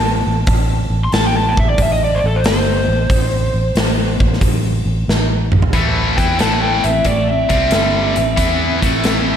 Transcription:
0.00 0.25 A1 medium
0.00 0.23 A5 loud
0.27 0.47 A1 loud
0.47 0.89 A1 medium
0.47 kick loud
0.47 open hi-hat medium
0.90 1.11 A1 medium
1.04 1.12 C6 loud
1.12 1.55 A1 loud
1.12 1.27 A5 loud
1.12 snare loud
1.12 open hi-hat soft
1.27 1.34 G5 loud
1.37 1.58 A5 loud
1.48 1.52 G5 loud
1.57 1.77 A1 medium
1.57 1.69 E5 loud
1.57 kick medium
1.69 1.78 D5 loud
1.78 2.21 A1 medium
1.78 kick medium
1.78 open hi-hat medium
1.82 1.92 E5 loud
1.93 2.00 D#5 loud
2.04 2.25 D5 medium
2.15 2.18 C5 medium
2.24 2.43 A1 medium
2.24 2.39 A4 medium
2.36 2.44 C5 loud
2.44 2.87 G1 medium
2.44 4.39 C5 loud
2.44 snare loud
2.44 open hi-hat medium
2.88 3.09 A1 loud
3.10 3.53 A1 loud
3.10 kick loud
3.10 open hi-hat medium
3.54 3.75 A1 medium
3.75 4.18 A1 medium
3.75 snare loud
3.75 open hi-hat medium
4.20 4.41 A1 medium
4.20 kick medium
4.33 snare soft
4.41 4.84 A1 loud
4.41 kick medium
4.41 open hi-hat medium
4.86 5.06 A1 medium
5.08 5.51 A1 medium
5.08 snare medium
5.52 5.72 A1 loud
5.52 mid tom medium
5.62 floor tom loud
5.73 6.15 A1 medium
5.73 6.18 A2 medium
5.73 6.17 E3 medium
5.73 6.18 A3 medium
5.73 kick medium
5.73 closed hi-hat medium
6.17 6.38 E2 medium
6.17 6.38 E3 medium
6.17 6.39 B3 medium
6.17 6.39 E4 medium
6.17 6.40 E4 medium
6.17 6.39 G5 medium
6.17 kick medium
6.17 closed hi-hat soft
6.39 6.82 A1 medium
6.39 6.83 A2 medium
6.39 6.83 E3 medium
6.39 6.84 A3 medium
6.39 6.62 A5 medium
6.39 snare medium
6.39 closed hi-hat medium
6.44 6.63 E4 medium
6.62 6.84 E4 medium
6.62 6.84 G5 medium
6.84 7.04 A1 medium
6.84 7.03 A2 medium
6.84 7.03 E3 medium
6.84 7.05 E5 medium
6.84 closed hi-hat soft
6.89 7.07 C4 medium
7.05 7.48 A1 medium
7.05 7.42 A2 medium
7.05 7.43 E3 medium
7.05 7.28 D5 medium
7.05 kick medium
7.05 closed hi-hat medium
7.11 7.29 A3 medium
7.28 9.24 E5 medium
7.33 9.26 C4 medium
7.49 7.71 C2 medium
7.49 7.71 C3 medium
7.49 7.72 G3 medium
7.49 7.72 C4 medium
7.49 kick medium
7.49 closed hi-hat soft
7.71 8.14 G1 medium
7.71 8.16 G2 medium
7.71 8.16 D3 medium
7.71 8.17 G3 medium
7.71 snare loud
7.71 closed hi-hat medium
8.16 8.37 A1 medium
8.16 8.35 A2 medium
8.16 8.35 E3 medium
8.16 closed hi-hat medium
8.36 8.81 E2 medium
8.36 8.80 E3 medium
8.36 8.81 B3 medium
8.36 8.81 E4 medium
8.36 kick medium
8.36 closed hi-hat medium
8.81 9.37 A1 medium
8.81 9.37 A2 medium
8.81 9.37 E3 medium
8.81 9.37 A3 medium
8.81 kick medium
8.81 snare soft
8.81 closed hi-hat medium
9.04 snare medium
9.04 closed hi-hat medium

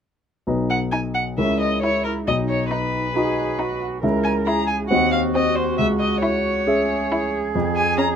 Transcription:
0.47 1.35 B1 soft
0.47 1.33 D#4 soft
0.47 1.34 B4 soft
0.47 1.34 D#5 soft
0.70 0.78 F#5 soft
0.91 1.26 D#4 soft
0.91 0.99 G#5 soft
1.14 1.22 F#5 soft
1.38 2.24 C#2 soft
1.38 1.80 C#4 soft
1.38 2.23 E4 soft
1.38 2.23 A#4 soft
1.38 2.23 C#5 soft
1.38 1.60 E5 soft
1.60 1.81 D#5 soft
1.82 2.27 E4 soft
1.82 2.16 E4 soft
1.82 2.04 C#5 soft
2.05 2.13 A#4 soft
2.27 3.99 B1 soft
2.27 3.14 D#4 soft
2.27 2.36 D#5 soft
2.49 2.70 C#5 soft
2.71 3.04 D#4 soft
2.71 3.79 B4 soft
3.16 4.00 D#4 soft
3.16 4.00 F#4 soft
3.16 3.60 G#4 soft
3.16 4.00 D#5 soft
3.59 3.92 D#4 soft
3.59 4.02 F#4 soft
4.03 4.88 C#2 soft
4.03 4.87 C#4 soft
4.03 4.87 E4 soft
4.03 4.49 A#4 soft
4.03 4.87 E5 soft
4.23 4.31 G#5 soft
4.46 4.80 E4 soft
4.46 4.91 G#4 soft
4.46 4.67 A#5 medium
4.67 4.75 G#5 soft
4.89 5.76 D#2 soft
4.89 5.75 C4 soft
4.89 5.75 F#4 soft
4.89 6.68 F#4 soft
4.89 5.76 D#5 soft
4.89 5.11 F#5 medium
5.12 5.20 F5 medium
5.34 5.68 C4 soft
5.34 5.57 D#5 soft
5.55 5.77 C5 soft
5.78 7.50 C#2 soft
5.78 5.86 E5 medium
6.00 6.21 D#5 medium
6.22 6.56 E4 soft
6.22 7.30 C#5 medium
6.67 7.50 C#4 soft
6.67 8.16 G#4 soft
6.67 7.51 G#4 soft
6.67 7.51 E5 soft
7.12 7.44 E4 soft
7.55 8.16 F2 soft
7.76 7.96 G#5 medium
7.98 8.16 C#4 soft
7.98 8.06 A#5 medium

